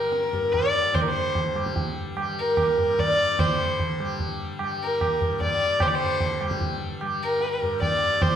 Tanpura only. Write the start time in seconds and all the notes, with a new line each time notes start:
Already playing: G2 D3 G3
0.33 G2
0.93 D3
1.55 G3
2.16 G3
2.77 G2
3.38 D3
4.00 G3
4.60 G3
5.20 G2
5.82 D3
6.41 G3
7.02 G3
7.62 G2
8.22 D3